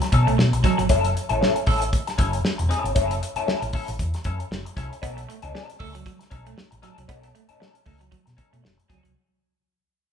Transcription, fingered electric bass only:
0.13 0.25 B2 medium
0.27 0.37 B1 medium
0.38 0.51 B2 loud
0.52 0.62 B1 medium
0.79 0.88 G1 medium
0.90 1.12 F#1 medium
1.30 1.40 A1 medium
1.67 1.89 A1 loud
2.19 2.41 F#1 loud
2.44 muted fingered electric bass stroke medium
2.59 2.69 E1 medium
2.84 2.94 G1 medium
2.96 3.18 F#1 medium
3.36 muted fingered electric bass stroke medium
3.48 muted fingered electric bass stroke soft
3.62 3.72 A1 loud
3.89 3.98 A1 medium
4.00 4.12 E2 loud
4.25 4.38 F#2 loud
4.51 4.63 F#1 loud
4.77 4.89 C2 medium
5.03 5.25 B1 loud
5.43 5.53 C#2 loud
5.80 6.02 C#2 loud
6.32 6.54 B1 medium
6.72 6.82 A1 medium
6.98 7.07 C2 medium
7.09 7.31 B1 medium
7.49 muted fingered electric bass stroke medium
7.87 8.09 C#2 loud
8.27 8.37 B2 medium
8.53 8.62 B2 loud
8.90 9.02 C#2 loud
9.05 9.14 C2 medium

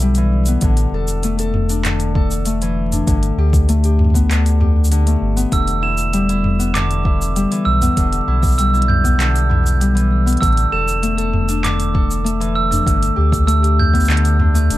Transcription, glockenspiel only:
5.53 5.82 E6 medium
5.83 6.12 E7 medium
6.74 7.03 D6 loud
7.65 7.95 E6 medium
8.58 8.87 E6 medium
8.88 9.18 G6 medium
10.41 10.70 E6 medium
10.72 11.01 E7 medium
11.64 11.93 D6 medium
12.55 12.85 E6 medium
13.47 13.77 E6 medium
13.79 14.08 G6 medium

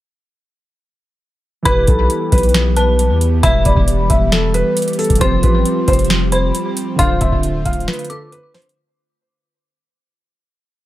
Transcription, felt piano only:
1.66 1.85 B4 loud
1.88 2.30 A4 medium
2.32 2.51 B4 medium
2.77 3.39 B4 medium
3.43 3.62 E5 loud
3.66 4.07 D5 medium
4.10 4.29 E5 medium
4.32 4.51 A4 medium
4.54 4.96 B4 medium
4.99 5.18 A4 medium
5.21 5.40 C5 loud
5.43 5.85 B4 medium
5.88 6.07 C5 medium
6.32 6.95 C5 medium
6.99 7.18 F5 loud
7.21 7.63 E5 medium
7.65 7.85 F5 medium
7.88 8.07 B4 medium
8.10 8.29 A4 medium
8.32 8.51 B4 medium
8.54 8.73 C5 medium

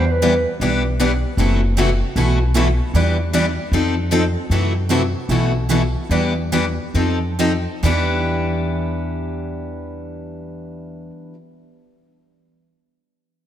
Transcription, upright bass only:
0.00 0.44 E2 medium
0.60 1.23 B1 medium
1.37 2.00 F#1 medium
2.16 2.79 B1 medium
2.94 3.57 E2 medium
3.72 4.35 F2 medium
4.50 5.13 F#2 medium
5.29 5.94 B1 medium
6.09 6.77 E2 medium
6.94 7.65 F2 medium
7.83 11.09 E2 medium

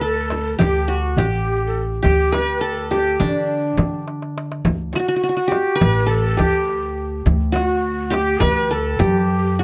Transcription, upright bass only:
0.00 0.55 D2 medium
0.60 1.14 D2 medium
1.17 2.00 A1 medium
2.05 3.16 D2 medium
3.21 3.74 D3 medium
3.78 4.61 D3 medium
4.65 4.91 D2 medium
5.81 6.35 A1 loud
6.39 7.22 D2 medium
7.26 8.38 D2 loud
8.42 8.96 D2 loud
9.00 9.64 F#2 medium

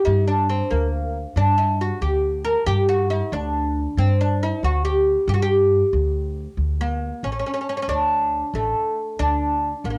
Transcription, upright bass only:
0.07 0.59 G2 loud
0.71 1.24 D2 medium
1.36 1.89 G2 loud
2.01 2.54 D2 medium
2.67 3.19 G2 loud
3.32 3.85 D2 medium
3.97 4.50 G2 medium
4.63 5.16 D2 medium
5.28 5.80 G2 loud
5.93 6.46 D2 medium
6.57 7.10 D2 medium
7.23 7.41 A1 medium
7.88 8.41 D2 medium
8.54 8.71 A1 medium
9.19 9.72 D2 medium
9.84 9.98 A1 medium

